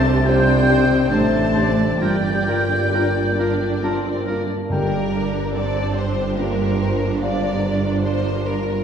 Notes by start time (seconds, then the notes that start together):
Already playing: C2 C3 A3 C4 G4 C5 A5 A6
0.26 G3 C4 D4 F4 G4 C5 G5 G6
0.67 D#3 D4 G4 C5
1.10 A1 A2 A3 D4 G4 C5 A5 A6
1.54 D4 G4 C5 D5
2.00 G1 G2 G3 A#3 F4 G4 A#4 D5 G5 G6
2.46 F4 A#4
2.92 A#3 D4 F4 A#4
3.37 D4 F4 A#4
3.83 C4 D4 F4 A#4 A5
4.27 A#3 F4 A#4
4.70 G1 G2 A#3 D4 A#4 D5 G5
5.12 D4
5.53 D3 C4 D4 A4 C5 D5
5.95 G4 C5
6.37 A#3 D4 F4 A#4
6.79 A#3
7.20 D4 A#4 D5 F5
8.02 F4 A#4 C5 D5
8.45 A#4